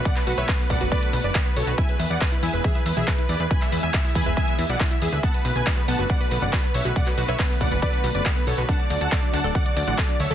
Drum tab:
HH |xxoxxooxxxoxxxox|xxoxxxoxxxoxxxox|xxoxxooxxxoxxxox|xxoxxxoxxxoxxxo-|
CP |-x--x-------x---|----x-------x---|-x--x-------x---|----x-------x---|
BD |o---o-o-o---o---|o---o---o---o---|o---o-o-o---o---|o---o---o---o---|

HH |xxoxxooxxxoxxxox|xxoxxxoxxxoxxxox|
CP |-x--x-------x---|----x-------x---|
BD |o---o-o-o---o---|o---o---o---o---|